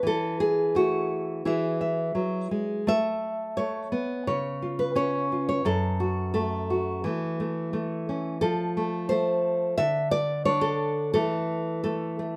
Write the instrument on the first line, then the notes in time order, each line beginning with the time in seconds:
nylon-string guitar
0.03 E3 A4
0.40 G#4
0.75 A3 F#4
1.45 E3 E4 G#4 E5
1.81 E5
2.15 F#3
2.51 G#3
2.87 A3 E5
3.57 A3 C#5
3.92 B3
4.27 C#3 C#5
4.62 F4
4.79 B4
4.95 C#4 C#5
5.32 F4
5.49 C#5
5.65 F#2 A4
6.00 F#4
6.34 A3 A4
6.70 F#4
7.04 E3 A3
7.40 A3
7.73 A3
8.09 C#4
8.41 F3 A4
8.77 A3
9.09 A3 C5
9.78 D3 E5
10.11 D5
10.45 D4 C#5
10.61 A4
11.14 E3 A3 A4
11.84 A3 A4
12.19 A3